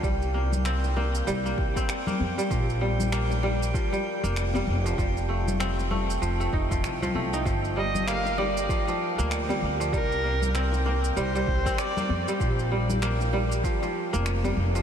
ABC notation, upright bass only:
X:1
M:4/4
L:1/16
Q:"Swing 16ths" 1/4=97
K:Cdor
V:1 name="Upright bass" clef=bass
C,,8 C,,2 C,, z3 F,, z | B,,,8 z3 F,,,3 F,,,2 | F,,,8 F,,,2 F,,,2 C,,2 C,,2 | G,,,8 z3 D,,3 D,,2 |
C,,8 C,,2 C,, z3 F,, z | B,,,8 z3 F,,,3 F,,,2 |]